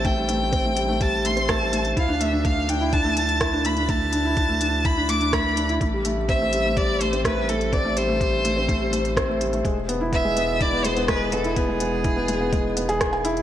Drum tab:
HH |x-x-x-x-x-xxx-xx|x-x-x-x-x-xxx-xx|x-x-x-x-x-xxx-xx|x-x-x-x-x-xxx-xx|
SD |------------r---|------------r---|------------r---|------------r---|
BD |o---o---o---o---|o---o---o---o---|o---o---o---o---|o---o---o---o---|

HH |x-x-x-x-x-xxx-xx|x-x-x-x-x-xxx-xx|x-x-x-x-x-xxx-xx|
SD |------------r---|------------r---|------------r---|
BD |o---o---o---o---|o---o---o---o---|o---o---o---o---|